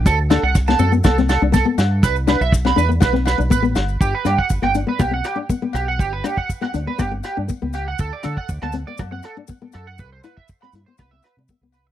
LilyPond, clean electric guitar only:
\new Staff \with { instrumentName = "Clean electric guitar" } { \time 4/4 \key g \major \tempo 4 = 121 a'16 r16 a'16 fis''16 r16 a''16 a'16 r16 a'16 r16 a'16 r16 a'16 r8. | b'16 r16 b'16 e''16 r16 b''16 b'16 r16 b'16 r16 b'16 r16 b'16 r8. | g'16 b'16 g'16 fis''16 r16 g''16 r16 b'16 g'16 fis''16 g'16 r8. g'16 fis''16 | g'16 b'16 g'16 fis''16 r16 fis''16 r16 b'16 g'16 r16 g'16 r8. g'16 fis''16 |
a'16 d''16 a'16 fis''16 r16 a''16 r16 d''16 r16 fis''16 a'16 r8. a'16 fis''16 | b'16 c''16 b'16 e''16 r16 b''16 r16 c''16 b'16 e''16 b'16 r8. b'16 r16 | }